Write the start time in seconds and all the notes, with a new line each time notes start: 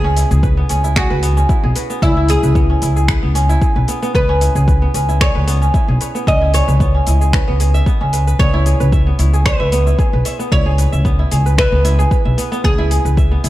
Already playing: C#2 B3 E4 G#4 B4 E5
0.04 C#4
0.17 E4, open hi-hat, cabasa
0.31 C#2 G#4, cabasa
0.43 B4, kick, cabasa
0.57 B3
0.69 C#2 C#4, open hi-hat, cabasa
0.84 E4, cabasa
0.96 F#4 G#4, finger snap, kick, cabasa
1.10 C#2 B4
1.23 B3, open hi-hat, cabasa
1.37 C#4, cabasa
1.49 E4, kick, cabasa
1.63 B1 G#4
1.76 B4, open hi-hat, cabasa
1.90 B3, cabasa
2.02 C#2 C#4 E4, kick, cabasa
2.17 E4
2.29 G#4, open hi-hat, cabasa
2.43 C#2 B4, cabasa
2.55 B3, kick, cabasa
2.70 C#4
2.82 C#2 E4, open hi-hat, cabasa
2.96 G#4, cabasa
3.08 B4, finger snap, kick, cabasa
3.23 C#2 B3
3.35 C#4, open hi-hat, cabasa
3.49 E4, cabasa
3.62 G#4, kick, cabasa
3.76 B1 B4
3.88 B3, open hi-hat, cabasa
4.02 B3, cabasa
4.15 C#2 B3 B4, kick, cabasa
4.29 C#4
4.41 E4, open hi-hat, cabasa
4.55 C#2 G#4, cabasa
4.68 B4, kick, cabasa
4.82 B3
4.94 C#2 C#4, open hi-hat, cabasa
5.09 E4, cabasa
5.21 G#4 C#5, finger snap, kick, cabasa
5.35 C#2 B4
5.47 B3, open hi-hat, cabasa
5.62 C#4, cabasa
5.74 E4, kick, cabasa
5.88 B1 G#4
6.01 B4, open hi-hat, cabasa
6.15 B3, cabasa
6.27 C#2 C#4 D#5, kick, cabasa
6.41 E4
6.54 G#4 C#5, open hi-hat, cabasa
6.68 C#2 B4, cabasa
6.80 B3, kick, cabasa
6.94 C#4
7.07 C#2 E4, open hi-hat, cabasa
7.21 G#4, cabasa
7.33 B4, finger snap, kick, cabasa
7.48 C#2 B3
7.60 G#4, open hi-hat, cabasa
7.74 E5, cabasa
7.86 B3, kick, cabasa
8.01 C#2 C#4
8.13 B4, open hi-hat, cabasa
8.27 B4, cabasa
8.39 C#2 B3 C#5, kick, cabasa
8.54 E4
8.66 G#4, open hi-hat, cabasa
8.80 C#2 B4, cabasa
8.92 E5, kick, cabasa
9.07 B3
9.19 C#2 E4, open hi-hat, cabasa
9.33 G#4, cabasa
9.46 B4, finger snap, kick, cabasa
9.60 C#2 E5
9.72 B3, open hi-hat, cabasa
9.87 E4, cabasa
9.99 G#4, kick, cabasa
10.13 B1 B4
10.25 E5, open hi-hat, cabasa
10.39 B3, cabasa
10.52 C#2 E4 C#5, kick, cabasa
10.66 G#4
10.78 B4, open hi-hat, cabasa
10.92 C#2 E5, cabasa
11.05 B3, kick, cabasa
11.19 E4
11.31 C#2 G#4, open hi-hat, cabasa
11.46 B4, cabasa
11.58 B4 E5, finger snap, kick, cabasa
11.72 C#2 B3
11.85 E4, open hi-hat, cabasa
11.99 G#4, cabasa
12.11 B4, kick, cabasa
12.25 B1 E5
12.38 B3, open hi-hat, cabasa
12.52 B3, cabasa
12.64 C#2 B3 G#4, kick, cabasa
12.78 E4
12.91 G#4, open hi-hat, cabasa
13.05 C#2 B4, cabasa
13.17 E5, kick, cabasa
13.31 B3
13.44 C#2 E4, open hi-hat, cabasa